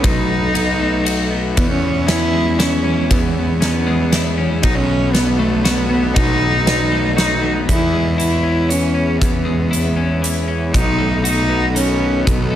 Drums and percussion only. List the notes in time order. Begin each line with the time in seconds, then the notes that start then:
0.04 kick, ride
0.55 ride
1.06 ride
1.57 kick, ride
2.08 snare, ride
2.60 snare, ride
3.11 kick, ride
3.62 snare, ride
4.12 snare, ride
4.63 kick, ride
5.15 snare, ride
5.65 snare, ride
6.16 kick, ride
6.67 snare, ride
7.18 snare, ride
7.69 kick, closed hi-hat
8.20 closed hi-hat
8.70 closed hi-hat
9.22 kick, closed hi-hat
9.73 closed hi-hat
10.24 closed hi-hat
10.74 kick, closed hi-hat
11.25 closed hi-hat
11.76 closed hi-hat
12.27 kick, closed hi-hat